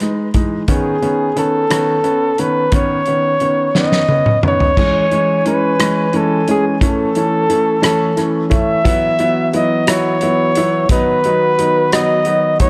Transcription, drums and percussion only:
0.00 cross-stick, closed hi-hat
0.34 kick, closed hi-hat
0.68 kick, closed hi-hat
1.02 closed hi-hat
1.37 closed hi-hat
1.71 cross-stick, closed hi-hat
2.04 closed hi-hat
2.38 closed hi-hat
2.72 kick, closed hi-hat
3.06 closed hi-hat
3.40 closed hi-hat
3.75 snare
3.92 snare
4.09 high tom
4.26 mid tom
4.43 mid tom
4.60 floor tom
4.77 kick, crash
5.12 closed hi-hat
5.46 closed hi-hat
5.80 cross-stick, closed hi-hat
6.13 closed hi-hat
6.48 closed hi-hat
6.81 kick, closed hi-hat
7.15 closed hi-hat
7.50 closed hi-hat
7.83 cross-stick, closed hi-hat
8.17 cross-stick, closed hi-hat
8.51 kick, closed hi-hat
8.85 kick, closed hi-hat
9.19 closed hi-hat
9.53 closed hi-hat
9.87 cross-stick, closed hi-hat
10.21 closed hi-hat
10.55 closed hi-hat
10.89 kick, closed hi-hat
11.24 closed hi-hat
11.59 closed hi-hat
11.92 cross-stick, closed hi-hat
12.25 closed hi-hat
12.60 kick, closed hi-hat

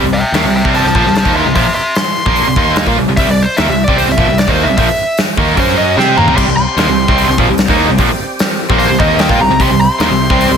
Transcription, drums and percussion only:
0.34 snare, open hi-hat
0.65 kick
0.74 open hi-hat
0.86 snare
0.95 kick
1.06 snare
1.16 snare, open hi-hat
1.25 kick
1.55 kick, open hi-hat
1.95 snare, open hi-hat
2.26 kick
2.36 open hi-hat
2.56 kick
2.76 snare, open hi-hat
2.87 kick
3.17 kick, open hi-hat
3.57 snare, open hi-hat
3.88 kick
3.98 open hi-hat
4.10 snare
4.18 kick
4.38 snare, open hi-hat
4.48 kick
4.78 kick, open hi-hat
5.17 snare, open hi-hat
5.38 kick
5.57 kick, open hi-hat
5.68 snare
5.99 snare
6.18 mid tom
6.28 floor tom
6.38 kick, crash
6.78 snare, open hi-hat
7.08 kick
7.18 open hi-hat
7.29 snare
7.38 kick
7.58 snare, open hi-hat
7.68 kick
7.98 kick, open hi-hat
8.39 snare, open hi-hat
8.70 kick
8.79 open hi-hat
9.00 kick
9.19 snare, open hi-hat
9.29 kick
9.60 kick, open hi-hat
10.00 snare, open hi-hat
10.30 kick
10.41 open hi-hat

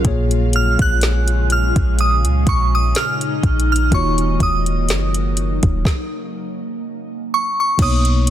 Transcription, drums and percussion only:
0.05 kick, closed hi-hat
0.31 closed hi-hat
0.53 closed hi-hat
0.79 kick, closed hi-hat
1.01 snare, closed hi-hat
1.28 closed hi-hat
1.50 closed hi-hat
1.76 kick, closed hi-hat
1.99 closed hi-hat
2.25 closed hi-hat
2.47 kick, closed hi-hat
2.95 snare, closed hi-hat
3.21 closed hi-hat
3.43 kick, closed hi-hat
3.60 closed hi-hat
3.76 closed hi-hat
3.92 kick, closed hi-hat
4.18 closed hi-hat
4.40 kick, closed hi-hat
4.66 closed hi-hat
4.89 snare, closed hi-hat
5.14 closed hi-hat
5.37 closed hi-hat
5.63 kick, closed hi-hat
5.85 kick, snare
7.79 kick, closed hi-hat, crash
8.05 closed hi-hat
8.27 closed hi-hat

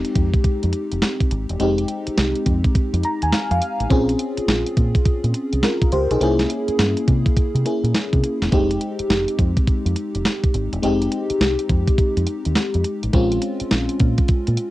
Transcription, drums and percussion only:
0.05 closed hi-hat
0.15 kick, closed hi-hat
0.34 kick, closed hi-hat
0.44 kick, closed hi-hat
0.63 closed hi-hat
0.73 closed hi-hat
0.92 closed hi-hat
1.02 snare, closed hi-hat
1.20 kick, closed hi-hat
1.31 closed hi-hat
1.49 closed hi-hat
1.60 closed hi-hat
1.78 closed hi-hat
1.88 closed hi-hat
2.07 closed hi-hat
2.18 snare, closed hi-hat
2.35 closed hi-hat
2.46 kick, closed hi-hat
2.64 kick, closed hi-hat
2.75 kick, closed hi-hat
2.94 closed hi-hat
3.03 closed hi-hat
3.22 closed hi-hat
3.33 snare, closed hi-hat
3.51 closed hi-hat
3.62 closed hi-hat
3.80 closed hi-hat
3.90 kick, closed hi-hat
4.09 closed hi-hat
4.19 closed hi-hat
4.37 closed hi-hat
4.48 snare, closed hi-hat
4.66 closed hi-hat
4.77 kick, closed hi-hat
4.95 kick, closed hi-hat
5.06 kick, closed hi-hat
5.24 closed hi-hat
5.34 closed hi-hat
5.53 closed hi-hat
5.63 snare, closed hi-hat
5.82 kick, closed hi-hat
5.92 closed hi-hat
6.11 closed hi-hat
6.21 closed hi-hat
6.39 snare, closed hi-hat
6.50 closed hi-hat
6.68 closed hi-hat
6.79 snare, closed hi-hat
6.97 closed hi-hat
7.08 kick, closed hi-hat
7.26 kick, closed hi-hat
7.37 kick, closed hi-hat
7.56 closed hi-hat
7.66 closed hi-hat
7.84 closed hi-hat
7.95 snare, closed hi-hat
8.13 kick, closed hi-hat
8.24 closed hi-hat
8.42 snare, closed hi-hat
8.52 kick, closed hi-hat
8.71 closed hi-hat
8.81 closed hi-hat
8.99 closed hi-hat
9.10 snare, closed hi-hat
9.28 closed hi-hat
9.39 kick, closed hi-hat
9.57 kick, closed hi-hat
9.68 kick, closed hi-hat
9.86 closed hi-hat
9.96 closed hi-hat
10.15 closed hi-hat
10.25 snare, closed hi-hat
10.44 kick, closed hi-hat
10.54 closed hi-hat
10.73 closed hi-hat
10.83 closed hi-hat
11.02 closed hi-hat
11.12 closed hi-hat
11.30 closed hi-hat
11.41 snare, closed hi-hat
11.59 closed hi-hat
11.70 kick, closed hi-hat
11.88 kick, closed hi-hat
11.98 kick, closed hi-hat
12.17 closed hi-hat
12.27 closed hi-hat
12.45 closed hi-hat
12.55 snare, closed hi-hat
12.74 closed hi-hat
12.84 closed hi-hat
13.03 closed hi-hat
13.13 kick, closed hi-hat
13.32 closed hi-hat
13.42 closed hi-hat
13.60 closed hi-hat
13.71 snare, closed hi-hat
13.89 closed hi-hat
13.99 kick, closed hi-hat
14.18 kick, closed hi-hat
14.28 kick, closed hi-hat
14.47 closed hi-hat
14.57 closed hi-hat

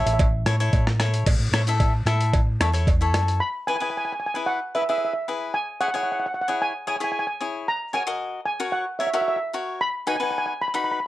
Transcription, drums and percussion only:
0.07 closed hi-hat
0.19 kick, closed hi-hat, cowbell
0.46 cross-stick, closed hi-hat
0.60 closed hi-hat
0.73 kick, closed hi-hat, cowbell
0.87 cross-stick
1.00 cross-stick, closed hi-hat
1.14 closed hi-hat
1.26 kick, closed hi-hat, crash, cowbell
1.54 cross-stick, closed hi-hat
1.67 closed hi-hat
1.80 kick, closed hi-hat, cowbell
2.07 cross-stick, closed hi-hat
2.21 closed hi-hat
2.33 kick, closed hi-hat, cowbell
2.61 cross-stick, closed hi-hat, cowbell
2.74 closed hi-hat
2.87 kick, closed hi-hat, cowbell
3.14 cross-stick, closed hi-hat, cowbell
3.28 closed hi-hat

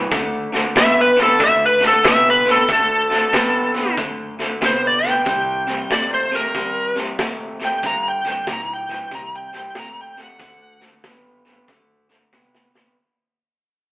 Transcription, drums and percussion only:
0.12 kick, snare, closed hi-hat
0.54 snare, closed hi-hat
0.76 kick, snare, closed hi-hat
1.18 snare, closed hi-hat
1.40 kick, snare, closed hi-hat
1.82 snare, closed hi-hat
2.05 kick, snare, closed hi-hat
2.47 snare, closed hi-hat
2.69 kick, snare, closed hi-hat
3.11 snare, closed hi-hat
3.33 kick, snare, closed hi-hat
3.75 snare, closed hi-hat
3.97 kick, snare, closed hi-hat
4.39 snare, closed hi-hat
4.62 kick, snare, closed hi-hat
5.04 snare, closed hi-hat
5.26 kick, snare, closed hi-hat
5.67 snare, closed hi-hat
5.91 kick, snare, closed hi-hat
6.33 snare, closed hi-hat
6.55 kick, snare, closed hi-hat
6.96 snare, closed hi-hat
7.19 kick, snare, closed hi-hat
7.60 snare, closed hi-hat
7.83 kick, snare, closed hi-hat
8.24 snare, closed hi-hat
8.47 kick, snare, closed hi-hat
8.89 snare, closed hi-hat
9.11 kick, snare, closed hi-hat
9.53 snare, closed hi-hat
9.75 kick, snare, closed hi-hat
10.17 snare, closed hi-hat
10.39 kick, snare, closed hi-hat
10.81 snare, closed hi-hat
11.03 kick, snare, closed hi-hat
11.45 snare, closed hi-hat
11.68 kick, snare, closed hi-hat
12.09 snare, closed hi-hat
12.33 kick, snare
12.55 snare
12.75 snare

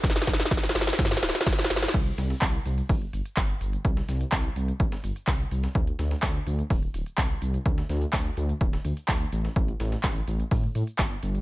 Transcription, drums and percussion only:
0.04 kick, snare, closed hi-hat, shaker
0.10 snare
0.16 snare, closed hi-hat
0.22 snare
0.27 kick, snare, open hi-hat, shaker
0.33 snare
0.40 snare, closed hi-hat, shaker
0.45 snare
0.51 kick, snare, closed hi-hat, shaker
0.57 snare
0.63 snare, closed hi-hat
0.69 snare
0.75 snare, open hi-hat, shaker
0.81 snare
0.87 snare, closed hi-hat, shaker
0.93 snare
0.99 kick, snare, closed hi-hat, shaker
1.05 snare
1.11 snare, closed hi-hat
1.17 snare
1.23 snare, open hi-hat, shaker
1.29 snare
1.35 snare, closed hi-hat, shaker
1.41 snare
1.46 kick, snare, closed hi-hat, shaker
1.53 snare
1.59 snare, closed hi-hat
1.64 snare
1.70 snare, open hi-hat, shaker
1.76 snare
1.82 snare, closed hi-hat, shaker
1.88 snare
1.94 kick, closed hi-hat, crash, shaker
2.06 closed hi-hat
2.18 snare, closed hi-hat, open hi-hat, shaker
2.30 snare, closed hi-hat, shaker
2.42 kick, snare, clap, closed hi-hat, shaker
2.54 closed hi-hat
2.66 closed hi-hat, open hi-hat, shaker
2.78 closed hi-hat, shaker
2.89 kick, closed hi-hat, open hi-hat, shaker
3.02 closed hi-hat
3.13 closed hi-hat, open hi-hat, shaker
3.26 closed hi-hat, shaker
3.37 kick, snare, clap, closed hi-hat, shaker
3.49 closed hi-hat
3.61 closed hi-hat, open hi-hat, shaker
3.73 closed hi-hat, shaker
3.85 kick, closed hi-hat, shaker
3.97 snare, closed hi-hat
4.09 snare, closed hi-hat, open hi-hat, shaker
4.21 closed hi-hat, shaker
4.32 kick, snare, clap, closed hi-hat, shaker
4.45 closed hi-hat
4.56 closed hi-hat, open hi-hat, shaker
4.68 closed hi-hat, shaker
4.80 kick, closed hi-hat, shaker
4.92 snare, closed hi-hat
5.04 closed hi-hat, open hi-hat, shaker
5.16 closed hi-hat, shaker
5.27 kick, snare, clap, closed hi-hat, shaker
5.40 closed hi-hat
5.51 closed hi-hat, open hi-hat, shaker
5.64 snare, closed hi-hat, shaker
5.75 kick, closed hi-hat, shaker
5.87 closed hi-hat
5.99 snare, closed hi-hat, open hi-hat, shaker
6.11 snare, closed hi-hat, shaker
6.22 kick, snare, clap, closed hi-hat, shaker
6.35 closed hi-hat
6.47 closed hi-hat, open hi-hat, shaker
6.59 closed hi-hat, shaker
6.70 kick, closed hi-hat, open hi-hat, shaker
6.83 closed hi-hat
6.94 closed hi-hat, open hi-hat, shaker
7.06 closed hi-hat, shaker
7.18 kick, snare, clap, closed hi-hat, shaker
7.30 closed hi-hat
7.42 closed hi-hat, open hi-hat, shaker
7.54 closed hi-hat, shaker
7.66 kick, closed hi-hat, shaker
7.78 snare, closed hi-hat
7.90 snare, closed hi-hat, open hi-hat, shaker
8.02 closed hi-hat, shaker
8.13 kick, snare, clap, closed hi-hat, shaker
8.25 closed hi-hat
8.37 closed hi-hat, open hi-hat, shaker
8.49 closed hi-hat, shaker
8.61 kick, closed hi-hat, shaker
8.73 snare, closed hi-hat
8.85 closed hi-hat, open hi-hat, shaker
8.97 closed hi-hat, shaker
9.08 kick, snare, clap, closed hi-hat, shaker
9.21 closed hi-hat
9.32 closed hi-hat, open hi-hat, shaker
9.45 snare, closed hi-hat, shaker
9.56 kick, closed hi-hat, shaker
9.68 closed hi-hat
9.80 snare, closed hi-hat, open hi-hat, shaker
9.92 snare, closed hi-hat, shaker
10.03 kick, snare, clap, closed hi-hat, shaker
10.16 closed hi-hat
10.28 closed hi-hat, open hi-hat, shaker
10.40 closed hi-hat, shaker
10.51 kick, closed hi-hat, open hi-hat, shaker
10.64 closed hi-hat
10.75 closed hi-hat, open hi-hat, shaker
10.87 closed hi-hat, shaker
10.99 kick, snare, clap, closed hi-hat, shaker
11.11 closed hi-hat
11.23 closed hi-hat, open hi-hat, shaker
11.35 closed hi-hat, shaker

